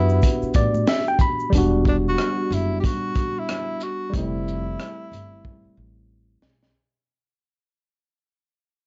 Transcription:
0.00 0.20 F#2 medium
0.00 0.83 B3 medium
0.00 1.48 B3 medium
0.00 1.50 D4 medium
0.00 0.85 E4 loud
0.00 1.51 F#4 medium
0.00 1.50 G4 medium
0.09 shaker soft
0.22 kick medium
0.22 closed hi-hat medium
0.22 shaker medium
0.42 muted upright bass stroke soft
0.42 shaker soft
0.54 0.85 A2 medium
0.54 0.86 D5 medium
0.54 kick medium
0.54 closed hi-hat medium
0.54 low conga medium
0.54 shaker soft
0.54 shaker medium
0.74 high conga medium
0.74 shaker soft
0.87 1.07 E5 medium
0.87 snare loud
0.87 closed hi-hat medium
0.87 shaker medium
1.07 1.20 G5 medium
1.07 shaker soft
1.19 1.51 B5 medium
1.19 kick medium
1.19 low conga medium
1.19 shaker medium
1.19 shaker soft
1.40 shaker soft
1.50 2.14 E1 medium
1.50 4.08 G3 medium
1.50 4.09 B3 medium
1.50 kick loud
1.50 closed hi-hat medium
1.55 4.11 D4 medium
1.55 4.12 F#4 medium
1.85 1.97 D4 medium
1.85 kick medium
1.85 shaker soft
2.09 2.55 F#4 loud
2.18 cross-stick medium
2.18 closed hi-hat medium
2.51 2.80 F#1 medium
2.51 2.79 E4 medium
2.51 closed hi-hat soft
2.51 shaker soft
2.80 2.88 G4 medium
2.80 kick medium
2.80 closed hi-hat medium
2.86 3.41 F#4 loud
3.15 kick medium
3.15 closed hi-hat medium
3.15 shaker soft
3.39 3.85 E4 medium
3.49 cross-stick loud
3.49 closed hi-hat medium
3.80 4.15 F#4 medium
3.80 cross-stick soft
3.80 shaker soft
4.10 4.75 F1 loud
4.10 6.69 G3 medium
4.10 6.70 A3 medium
4.10 kick loud
4.10 closed hi-hat medium
4.15 6.71 C4 medium
4.15 6.07 E4 medium
4.15 6.73 E4 medium
4.48 shaker soft
4.79 cross-stick loud
4.79 closed hi-hat medium
5.12 5.41 G1 medium
5.12 closed hi-hat soft
5.12 shaker soft
5.45 kick medium
5.65 muted upright bass stroke soft
5.77 6.38 A1 medium
6.42 6.72 B1 medium
6.42 snare medium
6.63 snare medium

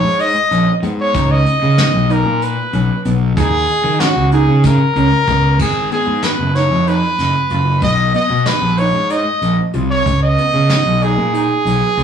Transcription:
0.00 0.32 G#2 medium
0.00 0.32 D#4 medium
0.00 0.22 C#5 medium
0.20 0.72 D#5 medium
0.20 closed hi-hat medium
0.51 0.65 A#1 medium
0.51 0.73 C#4 medium
0.51 closed hi-hat medium
0.83 1.11 G#2 medium
0.83 1.05 B3 medium
0.83 closed hi-hat medium
1.00 1.33 C#5 medium
1.14 1.43 C#2 medium
1.14 1.59 D#4 medium
1.14 kick loud
1.14 closed hi-hat medium
1.32 2.14 D#5 medium
1.46 closed hi-hat soft
1.62 1.76 C#3 medium
1.78 2.00 B3 medium
1.78 snare medium
1.78 closed hi-hat medium
1.93 2.22 B1 medium
2.10 2.54 D#4 medium
2.10 2.45 A#4 medium
2.10 closed hi-hat medium
2.25 2.54 A#2 medium
2.42 3.06 B4 medium
2.42 closed hi-hat medium
2.73 2.87 B1 medium
2.73 2.95 C#4 medium
2.73 closed hi-hat medium
3.05 3.34 B1 medium
3.05 3.27 B3 medium
3.05 closed hi-hat medium
3.37 3.65 D#2 medium
3.37 3.81 D#4 medium
3.37 4.01 G#4 medium
3.37 kick loud
3.37 closed hi-hat medium
3.69 closed hi-hat medium
3.84 3.98 D#3 medium
4.00 4.23 C#4 medium
4.00 4.32 F#4 medium
4.00 snare medium
4.00 closed hi-hat medium
4.16 4.45 C#2 medium
4.32 4.77 D#4 medium
4.32 4.62 G#4 medium
4.32 closed hi-hat medium
4.48 4.76 C#3 medium
4.63 5.57 A#4 medium
4.63 kick medium
4.63 snare soft
4.63 closed hi-hat medium
4.95 5.10 C#2 medium
4.95 5.18 C#4 medium
4.95 closed hi-hat medium
5.27 5.56 C#2 medium
5.27 5.50 B3 medium
5.27 kick medium
5.27 closed hi-hat medium
5.59 5.90 G#4 medium
5.59 kick medium
5.59 crash medium
5.91 6.14 B3 medium
5.91 6.26 G#4 medium
5.91 closed hi-hat soft
6.07 6.21 G#2 medium
6.22 6.46 B3 medium
6.22 6.57 B4 medium
6.22 snare medium
6.22 closed hi-hat medium
6.39 6.67 F#1 medium
6.55 6.77 D#4 medium
6.55 6.90 C#5 medium
6.55 snare soft
6.55 closed hi-hat soft
6.70 6.99 F2 medium
6.87 7.31 D#4 medium
6.87 7.82 B4 medium
6.87 closed hi-hat medium
7.18 7.33 F#1 medium
7.18 snare soft
7.18 closed hi-hat medium
7.50 7.79 F#1 medium
7.50 7.73 F4 medium
7.50 closed hi-hat medium
7.82 8.11 B1 medium
7.82 8.12 D#5 medium
7.82 kick medium
7.82 closed hi-hat medium
8.14 8.37 B3 medium
8.14 8.48 D#5 medium
8.14 closed hi-hat medium
8.30 8.44 B2 medium
8.46 8.69 B3 medium
8.46 8.80 B4 medium
8.46 snare medium
8.46 closed hi-hat medium
8.61 8.91 A#1 medium
8.78 9.01 D#4 medium
8.78 9.13 C#5 medium
8.78 closed hi-hat medium
8.93 9.22 G#2 medium
9.10 9.55 D#4 medium
9.10 9.63 D#5 medium
9.10 closed hi-hat medium
9.41 9.56 A#1 medium
9.41 closed hi-hat medium
9.74 10.03 C2 medium
9.74 9.96 F4 medium
9.74 closed hi-hat medium
9.91 10.20 C#5 medium
10.06 10.35 C#2 medium
10.06 kick medium
10.06 closed hi-hat medium
10.23 11.04 D#5 medium
10.38 10.60 B3 medium
10.38 closed hi-hat soft
10.54 10.68 C#3 medium
10.70 10.92 B3 medium
10.70 snare medium
10.70 closed hi-hat medium
10.85 11.14 B1 medium
11.02 11.24 D#4 medium
11.02 12.04 G#4 medium
11.02 closed hi-hat soft
11.18 11.46 A#2 medium
11.33 11.78 D#4 medium
11.33 closed hi-hat medium
11.65 11.80 B1 medium
11.65 closed hi-hat medium
11.97 12.04 C#2 medium
11.97 12.04 F4 medium
11.97 closed hi-hat medium

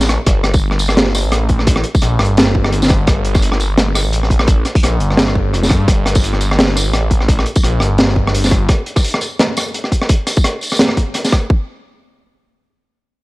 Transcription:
0.00 0.18 A1 medium
0.00 snare soft
0.00 tambourine soft
0.09 cross-stick medium
0.09 closed hi-hat medium
0.26 1.26 G1 loud
0.26 kick loud
0.26 cross-stick medium
0.26 closed hi-hat loud
0.44 cross-stick medium
0.44 closed hi-hat medium
0.54 kick loud
0.54 tambourine soft
0.71 cross-stick medium
0.79 closed hi-hat soft
0.79 tambourine soft
0.89 cross-stick medium
0.97 snare loud
0.97 closed hi-hat medium
1.15 cross-stick medium
1.15 tambourine medium
1.24 1.84 A1 medium
1.32 cross-stick medium
1.32 closed hi-hat medium
1.49 kick medium
1.49 closed hi-hat medium
1.59 cross-stick medium
1.67 kick loud
1.67 closed hi-hat loud
1.76 cross-stick medium
1.84 closed hi-hat medium
1.95 kick loud
1.95 tambourine soft
2.02 2.19 A#1 loud
2.02 cross-stick medium
2.02 closed hi-hat medium
2.19 3.07 G1 medium
2.19 cross-stick medium
2.19 closed hi-hat soft
2.22 closed hi-hat soft
2.25 closed hi-hat soft
2.37 snare loud
2.37 closed hi-hat medium
2.47 cross-stick medium
2.55 kick medium
2.64 cross-stick medium
2.72 closed hi-hat medium
2.82 snare soft
2.82 tambourine soft
2.84 snare soft
2.88 kick loud
2.88 cross-stick soft
2.88 snare soft
2.88 closed hi-hat medium
3.07 4.06 G1 loud
3.07 kick loud
3.07 cross-stick medium
3.07 closed hi-hat medium
3.25 closed hi-hat medium
3.35 kick loud
3.35 cross-stick medium
3.35 tambourine soft
3.42 closed hi-hat medium
3.52 cross-stick medium
3.60 closed hi-hat medium
3.60 tambourine soft
3.78 cross-stick medium
3.78 snare loud
3.78 closed hi-hat medium
3.95 cross-stick medium
3.95 tambourine medium
4.05 4.64 A1 medium
4.13 closed hi-hat medium
4.23 cross-stick medium
4.30 kick medium
4.30 closed hi-hat medium
4.39 cross-stick medium
4.47 kick loud
4.47 closed hi-hat medium
4.65 cross-stick soft
4.65 closed hi-hat medium
4.75 kick loud
4.75 tambourine soft
4.83 4.99 A#1 loud
4.83 cross-stick medium
4.83 closed hi-hat medium
5.00 5.55 G1 medium
5.00 closed hi-hat soft
5.10 cross-stick medium
5.17 snare loud
5.17 closed hi-hat medium
5.28 cross-stick medium
5.35 kick medium
5.53 5.72 F1 loud
5.53 cross-stick soft
5.53 closed hi-hat medium
5.63 snare soft
5.63 tambourine soft
5.70 5.87 G2 medium
5.70 kick loud
5.70 cross-stick medium
5.70 closed hi-hat medium
5.88 6.87 G1 loud
5.88 kick loud
5.88 cross-stick soft
5.88 closed hi-hat medium
6.06 cross-stick medium
6.06 closed hi-hat medium
6.15 kick loud
6.15 tambourine soft
6.24 closed hi-hat medium
6.33 cross-stick soft
6.41 closed hi-hat soft
6.41 tambourine soft
6.51 cross-stick medium
6.59 snare loud
6.59 closed hi-hat medium
6.76 cross-stick medium
6.76 tambourine medium
6.86 7.45 A1 medium
6.93 cross-stick medium
6.93 closed hi-hat medium
7.11 kick medium
7.11 closed hi-hat medium
7.21 cross-stick soft
7.29 kick loud
7.29 closed hi-hat medium
7.39 cross-stick medium
7.46 closed hi-hat medium
7.56 kick loud
7.56 tambourine soft
7.63 7.80 A#1 loud
7.63 cross-stick soft
7.63 closed hi-hat medium
7.80 8.68 G1 medium
7.80 cross-stick medium
7.80 closed hi-hat soft
7.98 snare loud
7.98 closed hi-hat medium
8.09 cross-stick medium
8.16 kick medium
8.27 cross-stick medium
8.35 closed hi-hat medium
8.38 closed hi-hat medium
8.40 snare soft
8.40 closed hi-hat soft
8.40 tambourine soft
8.45 closed hi-hat soft
8.46 closed hi-hat soft
8.50 closed hi-hat soft
8.51 kick loud
8.51 cross-stick medium
8.51 closed hi-hat medium
8.69 kick loud
8.69 cross-stick medium
8.69 closed hi-hat medium
8.86 closed hi-hat medium
8.96 kick loud
8.96 cross-stick medium
8.96 tambourine soft
9.04 closed hi-hat medium
9.08 closed hi-hat medium
9.10 cross-stick medium
9.10 closed hi-hat soft
9.21 closed hi-hat medium
9.21 tambourine soft
9.39 cross-stick medium
9.39 snare loud
9.39 closed hi-hat medium
9.57 cross-stick medium
9.57 tambourine medium
9.74 closed hi-hat medium
9.84 cross-stick medium
9.92 kick medium
9.92 closed hi-hat medium
10.02 cross-stick medium
10.09 kick loud
10.09 closed hi-hat medium
10.27 cross-stick medium
10.27 closed hi-hat medium
10.27 tambourine soft
10.36 kick loud
10.36 tambourine soft
10.44 cross-stick medium
10.44 closed hi-hat medium
10.61 closed hi-hat medium
10.61 tambourine soft
10.64 tambourine soft
10.67 tambourine soft
10.70 cross-stick medium
10.70 tambourine soft
10.72 tambourine soft
10.74 tambourine soft
10.77 snare loud
10.77 closed hi-hat medium
10.77 tambourine soft
10.89 cross-stick medium
10.97 kick medium
10.97 closed hi-hat soft
11.14 cross-stick medium
11.14 closed hi-hat medium
11.25 snare soft
11.25 tambourine soft
11.32 kick loud
11.32 cross-stick medium
11.32 closed hi-hat soft
11.50 kick loud

